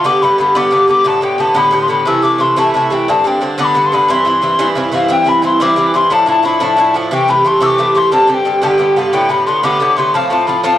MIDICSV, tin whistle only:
0, 0, Header, 1, 2, 480
1, 0, Start_track
1, 0, Tempo, 335946
1, 81, Time_signature, 6, 3, 24, 8
1, 15407, End_track
2, 0, Start_track
2, 0, Title_t, "Tin whistle"
2, 0, Program_c, 0, 75
2, 80, Note_on_c, 0, 86, 101
2, 312, Note_on_c, 0, 83, 90
2, 333, Note_off_c, 0, 86, 0
2, 549, Note_off_c, 0, 83, 0
2, 558, Note_on_c, 0, 83, 80
2, 809, Note_on_c, 0, 86, 89
2, 830, Note_off_c, 0, 83, 0
2, 1266, Note_off_c, 0, 86, 0
2, 1274, Note_on_c, 0, 86, 95
2, 1531, Note_on_c, 0, 81, 95
2, 1553, Note_off_c, 0, 86, 0
2, 1752, Note_off_c, 0, 81, 0
2, 1761, Note_on_c, 0, 79, 82
2, 1998, Note_on_c, 0, 81, 75
2, 2019, Note_off_c, 0, 79, 0
2, 2234, Note_on_c, 0, 83, 86
2, 2255, Note_off_c, 0, 81, 0
2, 2585, Note_off_c, 0, 83, 0
2, 2593, Note_on_c, 0, 84, 81
2, 2711, Note_off_c, 0, 84, 0
2, 2726, Note_on_c, 0, 83, 92
2, 2962, Note_on_c, 0, 88, 103
2, 2983, Note_off_c, 0, 83, 0
2, 3183, Note_on_c, 0, 86, 93
2, 3205, Note_off_c, 0, 88, 0
2, 3436, Note_on_c, 0, 84, 77
2, 3457, Note_off_c, 0, 86, 0
2, 3686, Note_on_c, 0, 81, 83
2, 3708, Note_off_c, 0, 84, 0
2, 3911, Note_off_c, 0, 81, 0
2, 3919, Note_on_c, 0, 81, 70
2, 4146, Note_off_c, 0, 81, 0
2, 4172, Note_on_c, 0, 79, 89
2, 4421, Note_on_c, 0, 81, 97
2, 4443, Note_off_c, 0, 79, 0
2, 4665, Note_on_c, 0, 79, 85
2, 4687, Note_off_c, 0, 81, 0
2, 4897, Note_off_c, 0, 79, 0
2, 5149, Note_on_c, 0, 86, 81
2, 5201, Note_on_c, 0, 83, 88
2, 5215, Note_off_c, 0, 86, 0
2, 5514, Note_on_c, 0, 84, 78
2, 5535, Note_off_c, 0, 83, 0
2, 5626, Note_on_c, 0, 83, 87
2, 5648, Note_off_c, 0, 84, 0
2, 5861, Note_on_c, 0, 84, 98
2, 5882, Note_off_c, 0, 83, 0
2, 6670, Note_off_c, 0, 84, 0
2, 7064, Note_on_c, 0, 77, 92
2, 7313, Note_on_c, 0, 79, 103
2, 7334, Note_off_c, 0, 77, 0
2, 7549, Note_on_c, 0, 83, 91
2, 7570, Note_off_c, 0, 79, 0
2, 7778, Note_off_c, 0, 83, 0
2, 7785, Note_on_c, 0, 84, 83
2, 8025, Note_on_c, 0, 86, 98
2, 8046, Note_off_c, 0, 84, 0
2, 8490, Note_off_c, 0, 86, 0
2, 8498, Note_on_c, 0, 84, 98
2, 8745, Note_on_c, 0, 81, 101
2, 8766, Note_off_c, 0, 84, 0
2, 8976, Note_off_c, 0, 81, 0
2, 8995, Note_on_c, 0, 81, 91
2, 9215, Note_on_c, 0, 83, 82
2, 9236, Note_off_c, 0, 81, 0
2, 9468, Note_on_c, 0, 81, 91
2, 9490, Note_off_c, 0, 83, 0
2, 9949, Note_on_c, 0, 77, 91
2, 9971, Note_off_c, 0, 81, 0
2, 10178, Note_off_c, 0, 77, 0
2, 10186, Note_on_c, 0, 79, 107
2, 10422, Note_on_c, 0, 83, 97
2, 10444, Note_off_c, 0, 79, 0
2, 10661, Note_on_c, 0, 84, 90
2, 10682, Note_off_c, 0, 83, 0
2, 10894, Note_on_c, 0, 88, 91
2, 10915, Note_off_c, 0, 84, 0
2, 10942, Note_on_c, 0, 86, 99
2, 10956, Note_off_c, 0, 88, 0
2, 11378, Note_on_c, 0, 84, 97
2, 11399, Note_off_c, 0, 86, 0
2, 11599, Note_off_c, 0, 84, 0
2, 11608, Note_on_c, 0, 81, 104
2, 11857, Note_off_c, 0, 81, 0
2, 11857, Note_on_c, 0, 81, 87
2, 11911, Note_on_c, 0, 79, 95
2, 11926, Note_off_c, 0, 81, 0
2, 12320, Note_off_c, 0, 79, 0
2, 12328, Note_on_c, 0, 81, 80
2, 12384, Note_on_c, 0, 79, 87
2, 12398, Note_off_c, 0, 81, 0
2, 12808, Note_on_c, 0, 77, 94
2, 12830, Note_off_c, 0, 79, 0
2, 13047, Note_on_c, 0, 79, 105
2, 13069, Note_off_c, 0, 77, 0
2, 13285, Note_on_c, 0, 83, 92
2, 13306, Note_off_c, 0, 79, 0
2, 13506, Note_off_c, 0, 83, 0
2, 13514, Note_on_c, 0, 84, 83
2, 13775, Note_on_c, 0, 86, 98
2, 13797, Note_off_c, 0, 84, 0
2, 14246, Note_on_c, 0, 84, 92
2, 14267, Note_off_c, 0, 86, 0
2, 14490, Note_on_c, 0, 81, 104
2, 14511, Note_off_c, 0, 84, 0
2, 14715, Note_off_c, 0, 81, 0
2, 14724, Note_on_c, 0, 81, 81
2, 14953, Note_on_c, 0, 83, 74
2, 14974, Note_off_c, 0, 81, 0
2, 15185, Note_off_c, 0, 83, 0
2, 15194, Note_on_c, 0, 81, 92
2, 15407, Note_off_c, 0, 81, 0
2, 15407, End_track
0, 0, End_of_file